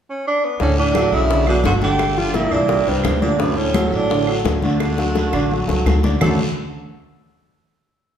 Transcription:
0.10 0.25 C#4 medium
0.28 0.46 D4 medium
0.45 0.61 B3 medium
0.60 1.09 D2 medium
0.60 0.77 A2 medium
0.60 0.89 D3 medium
0.60 0.77 C#4 medium
0.60 0.89 D4 medium
0.60 0.89 D5 medium
0.60 high bongo medium
0.60 high conga soft
0.60 long guiro medium
0.78 1.13 A2 medium
0.78 1.16 D4 medium
0.78 high conga soft
0.95 1.24 F#3 medium
0.95 1.24 F#4 medium
0.95 1.24 A4 medium
0.95 high bongo medium
0.95 high conga medium
0.95 short guiro medium
0.95 claves medium
1.12 1.61 B1 medium
1.12 1.47 C#3 medium
1.12 1.48 E4 loud
1.12 high conga soft
1.12 short guiro medium
1.29 1.44 D3 medium
1.29 1.44 D4 medium
1.29 1.45 D5 medium
1.29 high bongo medium
1.29 high conga soft
1.29 long guiro medium
1.47 1.64 B2 medium
1.47 1.76 F#3 medium
1.47 1.64 D4 medium
1.47 1.76 F#4 medium
1.47 1.76 A4 medium
1.47 high conga soft
1.47 claves medium
1.64 2.46 G1 medium
1.64 1.73 D3 medium
1.64 1.74 F#4 medium
1.64 high bongo medium
1.64 low bongo medium
1.64 high conga medium
1.64 short guiro medium
1.81 2.11 D3 medium
1.81 2.18 D3 medium
1.81 2.11 D4 medium
1.81 2.20 G4 loud
1.81 2.11 D5 medium
1.81 high conga medium
1.81 short guiro medium
1.99 high bongo medium
1.99 high conga soft
1.99 long guiro medium
1.99 claves medium
2.17 2.36 D3 medium
2.17 2.46 F3 medium
2.17 2.46 F4 medium
2.17 2.37 F4 medium
2.17 2.46 G4 medium
2.17 high bongo soft
2.17 high conga soft
2.34 2.52 A#2 medium
2.34 2.54 E4 medium
2.34 high bongo medium
2.34 high conga medium
2.34 short guiro medium
2.51 2.84 C2 medium
2.51 2.88 A#2 medium
2.51 2.66 E3 medium
2.51 2.90 D4 loud
2.51 2.67 E4 medium
2.51 2.67 E5 medium
2.51 high bongo soft
2.51 short guiro medium
2.51 claves medium
2.68 2.84 G3 medium
2.68 2.84 G4 medium
2.68 2.85 A#4 medium
2.68 high bongo medium
2.68 high conga soft
2.68 long guiro medium
2.87 3.03 C2 medium
2.87 3.21 G2 medium
2.87 3.16 G3 medium
2.87 3.23 C4 medium
2.87 3.16 G4 medium
2.87 3.16 A#4 medium
2.87 high bongo soft
2.87 high conga soft
3.03 3.86 D2 medium
3.03 high bongo medium
3.03 low bongo medium
3.03 high conga medium
3.03 short guiro medium
3.03 claves medium
3.21 3.41 A#2 medium
3.21 3.36 D3 medium
3.21 3.36 D4 medium
3.21 3.42 D4 medium
3.21 3.36 D5 medium
3.21 high conga medium
3.21 short guiro medium
3.38 3.58 F#2 medium
3.38 3.68 D3 medium
3.38 3.59 B3 medium
3.38 3.68 D4 medium
3.38 3.68 D5 medium
3.38 high bongo medium
3.38 high conga soft
3.38 long guiro medium
3.57 3.87 A2 medium
3.57 3.86 C#4 medium
3.57 high conga soft
3.74 4.03 F#3 medium
3.74 4.03 F#4 medium
3.74 4.03 A4 medium
3.74 high bongo medium
3.74 high conga medium
3.74 short guiro medium
3.74 claves medium
3.86 3.94 A2 medium
3.86 3.97 C#4 medium
3.92 4.41 A1 medium
3.92 4.36 A2 medium
3.92 4.37 D4 loud
3.92 high conga soft
3.92 short guiro medium
4.10 4.25 D3 medium
4.10 4.25 D4 medium
4.10 4.25 D5 medium
4.10 high bongo medium
4.10 high conga soft
4.10 long guiro medium
4.27 4.56 F#3 medium
4.27 4.56 F#4 medium
4.27 4.56 A4 medium
4.27 high conga soft
4.27 claves medium
4.44 5.27 D2 medium
4.44 high bongo medium
4.44 low bongo medium
4.44 high conga medium
4.44 short guiro medium
4.62 4.92 D3 medium
4.62 5.82 D3 medium
4.62 4.92 D4 medium
4.62 5.83 F#4 medium
4.62 4.92 D5 medium
4.62 high conga medium
4.62 short guiro medium
4.80 high bongo medium
4.80 high conga soft
4.80 long guiro medium
4.80 claves medium
4.98 5.27 F#3 medium
4.98 5.27 F#4 medium
4.98 5.27 A4 medium
4.98 high bongo medium
4.98 high conga soft
5.15 high bongo medium
5.15 high conga medium
5.15 short guiro medium
5.33 5.65 A1 medium
5.33 5.48 D3 medium
5.33 5.48 D4 medium
5.33 5.48 D5 medium
5.33 high bongo medium
5.33 short guiro medium
5.33 claves medium
5.51 5.65 F#3 medium
5.51 5.66 F#4 medium
5.51 5.66 A4 medium
5.51 high conga soft
5.51 long guiro medium
5.68 5.84 C#2 medium
5.68 5.96 F#3 medium
5.68 5.97 F#4 medium
5.68 5.97 A4 medium
5.68 low bongo medium
5.68 high conga soft
5.85 6.16 D2 medium
5.85 low bongo medium
5.85 high conga medium
5.85 short guiro medium
5.85 claves medium
6.03 6.17 D3 medium
6.03 6.18 D4 medium
6.03 6.18 D5 medium
6.03 low bongo medium
6.03 high conga medium
6.03 short guiro medium
6.20 6.37 D2 medium
6.20 6.37 F#2 medium
6.20 6.37 D3 medium
6.20 6.37 A3 medium
6.20 6.37 C#4 medium
6.20 6.37 D4 medium
6.20 6.37 F#4 medium
6.20 6.37 A4 medium
6.20 low bongo medium
6.20 low conga medium
6.20 long guiro medium
6.20 claves medium

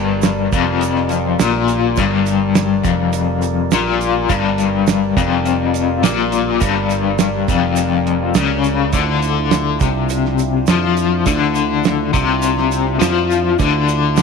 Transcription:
0.00 0.48 G1 medium
0.00 0.51 G2 loud
0.00 8.91 G3 medium
0.00 8.91 A#4 medium
0.00 8.91 D5 medium
0.22 snare medium
0.22 closed hi-hat medium
0.22 shaker medium
0.52 1.36 F1 medium
0.52 1.39 F2 medium
0.52 kick medium
0.52 closed hi-hat medium
0.52 shaker medium
0.81 closed hi-hat medium
0.81 shaker medium
0.96 snare soft
1.09 closed hi-hat medium
1.09 shaker medium
1.39 1.94 A#1 medium
1.39 1.97 A#2 loud
1.39 snare loud
1.39 closed hi-hat medium
1.39 shaker medium
1.68 closed hi-hat medium
1.68 shaker medium
1.96 2.81 G1 medium
1.96 2.85 G2 loud
1.96 kick medium
1.96 closed hi-hat medium
1.96 shaker medium
2.26 closed hi-hat medium
2.26 shaker medium
2.55 snare loud
2.55 closed hi-hat medium
2.55 shaker medium
2.84 3.68 F1 medium
2.84 3.71 F2 loud
2.84 kick loud
2.84 closed hi-hat medium
2.84 shaker medium
3.13 closed hi-hat medium
3.13 shaker medium
3.42 closed hi-hat medium
3.42 shaker medium
3.72 4.26 A#1 medium
3.72 4.29 A#2 loud
3.72 snare loud
3.72 closed hi-hat medium
3.72 shaker medium
4.01 closed hi-hat medium
4.01 shaker medium
4.29 5.13 G1 medium
4.29 5.16 G2 loud
4.29 kick loud
4.29 closed hi-hat medium
4.29 shaker medium
4.58 closed hi-hat medium
4.58 shaker medium
4.87 snare loud
4.87 closed hi-hat medium
4.87 shaker medium
5.17 6.00 F1 medium
5.17 6.03 F2 medium
5.17 kick medium
5.17 closed hi-hat medium
5.17 shaker medium
5.46 closed hi-hat medium
5.46 shaker medium
5.74 closed hi-hat medium
5.74 shaker medium
6.03 6.57 A#1 medium
6.03 6.61 A#2 loud
6.03 snare loud
6.03 closed hi-hat medium
6.03 shaker medium
6.32 closed hi-hat medium
6.32 shaker medium
6.60 7.45 G1 medium
6.60 7.47 G2 loud
6.60 kick loud
6.60 closed hi-hat medium
6.60 shaker medium
6.90 closed hi-hat medium
6.90 shaker medium
7.19 snare medium
7.19 closed hi-hat medium
7.19 shaker medium
7.48 8.32 F1 medium
7.48 8.35 F2 medium
7.48 kick loud
7.48 closed hi-hat medium
7.48 shaker medium
7.76 closed hi-hat medium
7.76 shaker medium
8.07 closed hi-hat medium
8.35 8.90 C#2 medium
8.35 8.93 C#3 loud
8.35 snare loud
8.35 closed hi-hat medium
8.35 shaker medium
8.64 closed hi-hat medium
8.64 shaker medium
8.93 9.77 D2 medium
8.93 9.81 D3 loud
8.93 14.22 D4 medium
8.93 14.22 E4 medium
8.93 14.22 F4 medium
8.93 kick medium
8.93 closed hi-hat medium
8.93 shaker medium
9.22 closed hi-hat medium
9.22 shaker medium
9.51 snare loud
9.51 closed hi-hat medium
9.51 shaker medium
9.80 10.64 C2 medium
9.80 10.68 C3 medium
9.80 kick loud
9.80 closed hi-hat medium
9.80 shaker medium
10.09 closed hi-hat medium
10.09 shaker medium
10.25 snare soft
10.38 closed hi-hat medium
10.38 shaker medium
10.67 11.23 F2 medium
10.67 11.26 F3 loud
10.67 snare loud
10.67 closed hi-hat medium
10.67 shaker medium
10.97 closed hi-hat medium
10.97 shaker medium
11.26 12.10 D2 medium
11.26 12.13 D3 loud
11.26 kick loud
11.26 closed hi-hat medium
11.26 shaker medium
11.55 closed hi-hat medium
11.55 shaker medium
11.84 snare loud
11.84 closed hi-hat medium
11.84 shaker medium
12.13 12.97 C2 medium
12.13 12.99 C3 medium
12.13 kick medium
12.13 closed hi-hat medium
12.13 shaker medium
12.42 closed hi-hat medium
12.42 shaker medium
12.58 snare soft
12.72 closed hi-hat medium
12.72 shaker medium
13.00 13.56 F2 medium
13.00 13.58 F3 loud
13.00 snare loud
13.00 closed hi-hat medium
13.00 shaker medium
13.31 closed hi-hat medium
13.31 shaker medium
13.59 14.22 D2 medium
13.59 14.22 D3 loud
13.59 kick medium
13.59 closed hi-hat medium
13.59 shaker medium
13.88 closed hi-hat medium
13.88 shaker medium
14.17 snare loud
14.17 closed hi-hat medium
14.17 shaker medium

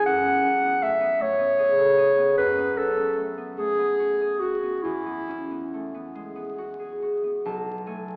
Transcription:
0.00 0.80 A3 soft
0.00 0.43 C#4 soft
0.00 1.57 G#4 soft
0.06 2.36 F#2 soft
0.06 0.84 F#5 medium
0.25 0.62 B3 soft
0.44 0.77 C#4 soft
0.64 0.99 B3 soft
0.81 1.14 A3 soft
0.81 1.23 E5 medium
1.01 1.37 B3 soft
1.19 3.15 A3 soft
1.19 2.37 C#5 medium
1.39 2.16 B3 soft
1.58 1.97 G#4 soft
1.78 2.12 A4 soft
1.98 4.20 G#4 soft
2.17 2.56 B3 soft
2.37 4.88 F#2 soft
2.37 2.79 B4 medium
2.58 2.96 B3 soft
2.76 3.11 C#4 soft
2.76 3.30 A4 medium
2.97 3.36 B3 soft
3.17 3.51 A3 soft
3.38 3.78 B3 soft
3.57 4.88 A3 soft
3.57 4.41 G#4 medium
3.79 4.62 B3 soft
3.99 4.40 F#4 soft
4.21 4.57 G#4 soft
4.40 4.84 F#4 medium
4.40 6.57 F#4 soft
4.63 5.05 B3 soft
4.83 7.48 E2 soft
4.83 6.15 E4 medium
5.06 5.49 B3 soft
5.28 5.66 C#4 soft
5.51 5.93 B3 soft
5.74 6.10 A3 soft
5.94 6.34 B3 soft
6.15 8.16 G#3 soft
6.36 7.22 B3 soft
6.58 7.01 F#4 soft
6.79 7.17 G#4 soft
7.02 8.16 F#4 soft
7.23 8.16 B3 soft
7.45 8.16 B1 medium
7.45 8.16 A5 soft
7.86 8.16 A3 soft
7.86 8.16 G#5 soft

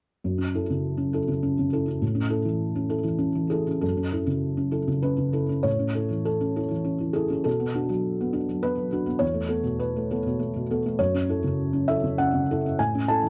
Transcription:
0.24 1.98 F#2 soft
0.38 0.63 C#4 soft
0.54 0.68 E4 soft
0.54 0.68 A4 soft
0.70 1.17 C#3 soft
0.97 1.22 C#4 soft
1.13 1.27 E4 soft
1.13 1.27 A4 soft
1.28 1.52 C#3 soft
1.43 1.66 C#4 soft
1.59 1.82 C#3 soft
1.73 1.86 E4 soft
1.73 1.86 A4 soft
1.88 2.02 C#4 soft
2.02 3.79 A2 soft
2.15 2.39 C#4 soft
2.30 2.43 E4 soft
2.30 2.44 A4 soft
2.45 2.93 E3 soft
2.75 2.99 C#4 soft
2.89 3.03 E4 soft
2.89 3.04 A4 soft
3.04 3.29 E3 soft
3.19 3.44 C#4 soft
3.35 3.61 E3 soft
3.50 3.65 E4 soft
3.50 3.82 G#4 medium
3.50 3.66 A4 soft
3.68 3.83 C#4 soft
3.81 5.61 F#2 soft
3.81 4.11 A4 soft
3.97 4.22 C#4 soft
4.12 4.27 E4 soft
4.12 4.27 A4 soft
4.27 4.77 C#3 soft
4.57 4.83 C#4 soft
4.71 4.87 E4 soft
4.71 4.87 A4 soft
4.88 5.13 C#3 soft
5.03 5.29 C#4 soft
5.03 5.64 B4 medium
5.18 5.43 C#3 soft
5.33 5.48 E4 soft
5.33 5.48 A4 soft
5.49 5.65 C#4 soft
5.63 7.41 A2 soft
5.63 6.25 C#5 medium
5.79 6.04 C#4 soft
5.95 6.10 E4 soft
5.95 6.09 A4 soft
6.10 6.59 E3 soft
6.25 6.55 A4 soft
6.41 6.65 C#4 soft
6.56 6.70 E4 soft
6.56 6.70 A4 soft
6.71 6.95 E3 soft
6.85 7.09 C#4 soft
7.00 7.25 E3 soft
7.13 7.29 E4 soft
7.13 7.44 G#4 medium
7.13 7.29 A4 soft
7.30 7.45 C#4 soft
7.44 9.17 B2 soft
7.44 8.62 A4 medium
7.60 7.84 B3 soft
7.75 7.88 D4 soft
7.75 7.88 F#4 soft
7.89 8.37 F#3 soft
8.21 8.43 B3 soft
8.33 8.47 D4 soft
8.33 8.47 F#4 soft
8.49 8.72 F#3 soft
8.63 8.87 B3 soft
8.63 9.21 B4 medium
8.78 9.01 F#3 soft
8.92 9.05 D4 soft
8.92 9.05 F#4 soft
9.07 9.21 B3 soft
9.19 10.93 E2 soft
9.19 9.78 C#5 medium
9.34 9.58 A3 soft
9.48 9.62 B3 soft
9.48 9.63 A4 soft
9.63 10.11 B2 soft
9.79 10.39 B4 medium
9.96 10.19 A3 soft
10.11 10.23 B3 soft
10.11 10.24 A4 soft
10.26 10.49 B2 soft
10.39 10.63 A3 soft
10.56 10.79 B2 soft
10.70 10.83 B3 soft
10.70 10.83 A4 soft
10.86 10.99 A3 soft
10.99 12.74 F#2 soft
10.99 11.88 C#5 medium
11.14 11.37 C#4 soft
11.29 11.42 E4 soft
11.29 11.42 A4 soft
11.44 11.91 C#3 soft
11.73 11.97 C#4 soft
11.88 12.01 E4 soft
11.88 12.02 A4 soft
11.88 12.17 E5 medium
12.04 12.27 C#3 soft
12.18 12.42 C#4 soft
12.18 12.77 F#5 medium
12.34 12.57 C#3 soft
12.51 12.62 E4 soft
12.51 12.63 A4 soft
12.66 12.79 C#4 soft
12.79 13.29 A2 soft
12.79 13.07 G#5 medium
12.95 13.17 C#4 soft
13.08 13.21 E4 soft
13.08 13.22 A4 soft
13.08 13.29 A5 medium
13.23 13.29 E3 soft

